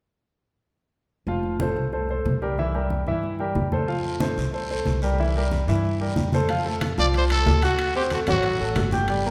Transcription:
1.27 upright bass F1, grand piano F3 F4 F5, high conga
1.43 high conga
1.60 grand piano A3 A4 C5, high conga
1.76 upright bass C2, high conga
1.92 grand piano A3 A4 C5, high conga
2.09 grand piano A3 A4 C5, high conga
2.25 upright bass C2, high conga
2.42 grand piano G3 G4 A#4, high conga
2.58 grand piano E3 E4 E5, high conga
2.74 grand piano G3 G4 A#4, high conga
2.90 high conga
3.07 upright bass G2, grand piano E3 E4 E5, high conga
3.23 high conga
3.39 grand piano G3 G4 A#4, high conga
3.55 upright bass F2, high conga
3.72 grand piano A3 A4 C5, high conga
3.88 grand piano F3 F4 F5, high conga, long guiro
4.04 high conga
4.20 grand piano A3 A4 C5, high conga, short guiro
4.37 upright bass C2, high conga, short guiro
4.53 grand piano A3 A4 C5, high conga, long guiro
4.70 grand piano A3 A4 C5, high conga
4.86 upright bass C2, high conga, short guiro
5.02 grand piano G3 G4 A#4, high conga, short guiro
5.18 grand piano E3 E4 E5, high conga, long guiro
5.36 grand piano G3 G4 A#4, high conga
5.51 high conga, short guiro
5.67 upright bass G2, grand piano E3 E4 E5, high conga, short guiro
5.84 high conga, long guiro
6.00 grand piano G3 G4 A#4, high conga
6.16 upright bass F2, high conga, short guiro
6.32 grand piano A3 A4 C5, high conga, short guiro
6.49 grand piano F3 F4 F5, high conga, high timbale, long guiro
6.66 grand piano A3 A4 A5, high conga
6.81 high conga, high timbale, short guiro
6.98 upright bass C2, grand piano F3 F4 F5, trumpet D5, high conga, short guiro
7.14 high conga, high timbale, long guiro
7.18 trumpet C5
7.30 grand piano A3 A4 A5, trumpet A4, high conga, high timbale
7.46 upright bass D2, high conga, low timbale, short guiro
7.62 grand piano F#4 F#5 F#6, trumpet F#4, high conga, high timbale, short guiro
7.78 high conga, high timbale, long guiro
7.95 grand piano C4 C5 C6, trumpet G4, high conga
8.10 grand piano A3 A4 A5, trumpet F#4, high conga, high timbale, short guiro
8.27 upright bass A1, grand piano F#3 F#4 F#5, trumpet F#4, high conga, low conga, high timbale, short guiro
8.43 high conga, high timbale, long guiro
8.60 upright bass A1, grand piano A3 A4 A5, high conga
8.75 upright bass G1, high conga, high timbale, low timbale, short guiro
8.91 grand piano G4 G5 G6, high conga, short guiro
9.08 grand piano G3 G4 G5, high conga, high timbale, long guiro
9.26 grand piano A#3 A#4 A#5, high conga

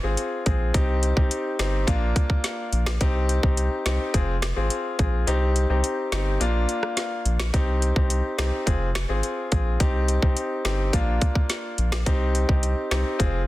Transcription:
0.03 sub bass G#1, grand piano C4 F4 G#4
0.17 closed hi-hat
0.46 sub bass A#1, grand piano C4 F4 G#4, kick, closed hi-hat
0.74 sub bass C2, grand piano C4 D#4 G4, kick, closed hi-hat
1.03 closed hi-hat
1.16 sub bass C2, grand piano C4 D#4 G4, kick
1.31 closed hi-hat
1.59 sub bass G1, grand piano C4 D#4 G4, finger snap, snare, closed hi-hat
1.87 sub bass A#1, grand piano A#3 D4 F4, kick, closed hi-hat
2.16 kick, closed hi-hat
2.30 kick
2.44 snare, closed hi-hat
2.73 sub bass A#1, closed hi-hat
2.86 finger snap, snare
3.01 sub bass C2, grand piano C4 D#4 G4, kick, closed hi-hat
3.29 closed hi-hat
3.43 sub bass C2, grand piano C4 D#4 G4, kick
3.57 closed hi-hat
3.85 sub bass C2, grand piano C4 D#4 G4, finger snap, snare, closed hi-hat
4.14 sub bass F1, grand piano C4 F4 G#4, kick, closed hi-hat
4.42 finger snap, snare, closed hi-hat
4.56 sub bass G#1, grand piano C4 F4 G#4
4.70 closed hi-hat
4.99 sub bass A#1, grand piano C4 F4 G#4, kick, closed hi-hat
5.27 sub bass C2, grand piano C4 D#4 G4, closed hi-hat
5.56 closed hi-hat
5.70 sub bass C2, grand piano C4 D#4 G4
5.84 closed hi-hat
6.12 sub bass G1, grand piano C4 D#4 G4, finger snap, snare, closed hi-hat
6.40 sub bass A#1, grand piano A#3 D4 F4, closed hi-hat
6.69 closed hi-hat
6.83 cross-stick
6.97 snare, closed hi-hat
7.25 sub bass A#1, closed hi-hat
7.40 finger snap, snare
7.53 sub bass C2, grand piano C4 D#4 G4, kick, closed hi-hat
7.82 closed hi-hat
7.96 sub bass C2, grand piano C4 D#4 G4, kick
8.10 closed hi-hat
8.38 sub bass C2, grand piano C4 D#4 G4, finger snap, snare, closed hi-hat
8.66 sub bass F1, grand piano C4 F4 G#4, kick, closed hi-hat
8.95 finger snap, snare, closed hi-hat
9.09 sub bass G#1, grand piano C4 F4 G#4
9.23 closed hi-hat
9.52 sub bass A#1, grand piano C4 F4 G#4, kick, closed hi-hat
9.80 sub bass C2, grand piano C4 D#4 G4, kick, closed hi-hat
10.08 closed hi-hat
10.22 sub bass C2, grand piano C4 D#4 G4, kick
10.37 closed hi-hat
10.65 sub bass G1, grand piano C4 D#4 G4, finger snap, snare, closed hi-hat
10.93 sub bass A#1, grand piano A#3 D4 F4, kick, closed hi-hat
11.21 kick, closed hi-hat
11.35 kick
11.50 snare, closed hi-hat
11.78 sub bass A#1, closed hi-hat
11.92 finger snap, snare
12.06 sub bass C2, grand piano C4 D#4 G4, kick, closed hi-hat
12.35 closed hi-hat
12.49 sub bass C2, grand piano C4 D#4 G4, kick
12.63 closed hi-hat
12.91 sub bass C2, grand piano C4 D#4 G4, finger snap, snare, closed hi-hat
13.19 sub bass F1, grand piano C4 F4 G#4, kick, closed hi-hat

